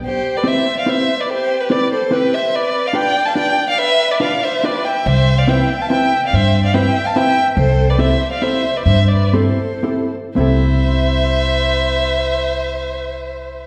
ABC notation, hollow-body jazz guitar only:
X:1
M:3/4
L:1/8
Q:1/4=141
K:C
V:1 name="Hollow-body jazz guitar"
z2 [CEGB] z [CEGB] z | z2 [CEGB] z [CEGB] z | z2 [DFGB] z [DFGB] z | z2 [DFGB] z [DFGB] z |
z2 [CEGB] z [CEGB] z | z2 [CEGB] z [CEGB] z | z2 [CEGA] z [CEGA] z | z2 [CEGA] z [CEGA] z |
[CEGA]6- | [CEGA]6 |]